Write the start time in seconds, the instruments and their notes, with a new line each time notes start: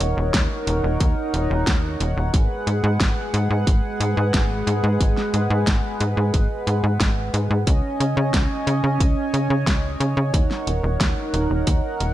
Already playing: analog synth pad D#4 A#4 C#5 F#5
0.00 analog synth bass D#1, closed hi-hat
0.17 analog synth bass D#1
0.34 analog synth bass D#2, kick, snare, closed hi-hat
0.67 analog synth bass D#1, closed hi-hat
0.84 analog synth bass D#1
1.00 analog synth bass D#2, kick, closed hi-hat
1.34 analog synth bass D#1, closed hi-hat
1.50 analog synth bass D#1
1.67 analog synth bass D#2, kick, snare, closed hi-hat
2.00 analog synth bass D#1, closed hi-hat
2.17 analog synth bass D#1
2.33 analog synth bass G#1, analog synth pad G#3 G#4 B4, kick, closed hi-hat
2.67 analog synth bass G#2, closed hi-hat
2.84 analog synth bass G#2
3.00 analog synth bass G#1, kick, snare, closed hi-hat
3.34 analog synth bass G#2, closed hi-hat
3.50 analog synth bass G#2
3.67 analog synth bass G#1, kick, closed hi-hat
4.00 analog synth bass G#2, closed hi-hat
4.17 analog synth bass G#2
4.34 analog synth bass G#1, kick, snare, closed hi-hat
4.67 analog synth bass G#2, closed hi-hat
4.84 analog synth bass G#2
5.00 analog synth bass G#1, kick, closed hi-hat
5.17 snare
5.34 analog synth bass G#2, closed hi-hat
5.50 analog synth bass G#2
5.67 analog synth bass G#1, kick, snare, closed hi-hat
6.00 analog synth bass G#2, closed hi-hat
6.17 analog synth bass G#2
6.34 analog synth bass G#1, kick, closed hi-hat
6.67 analog synth bass G#2, closed hi-hat
6.84 analog synth bass G#2
7.00 analog synth bass G#1, kick, snare, closed hi-hat
7.34 analog synth bass G#2, closed hi-hat
7.51 analog synth bass G#2
7.67 analog synth bass C#2, analog synth pad C#4 C#5 D#5 G#5, kick, closed hi-hat
8.00 analog synth bass C#3, closed hi-hat
8.17 analog synth bass C#3
8.34 analog synth bass C#2, kick, snare, closed hi-hat
8.67 analog synth bass C#3, closed hi-hat
8.84 analog synth bass C#3
9.00 analog synth bass C#2, kick, closed hi-hat
9.34 analog synth bass C#3, closed hi-hat
9.50 analog synth bass C#3
9.67 analog synth bass C#2, kick, snare, closed hi-hat
10.00 analog synth bass C#3, closed hi-hat
10.17 analog synth bass C#3
10.34 analog synth bass D#2, analog synth pad D#4 A#4 F#5, kick, closed hi-hat
10.51 snare
10.67 analog synth bass D#1, closed hi-hat
10.84 analog synth bass D#1
11.00 analog synth bass D#2, kick, snare, closed hi-hat
11.34 analog synth bass D#1, closed hi-hat
11.50 analog synth bass D#1
11.67 analog synth bass D#2, kick, closed hi-hat
12.00 analog synth bass D#1, closed hi-hat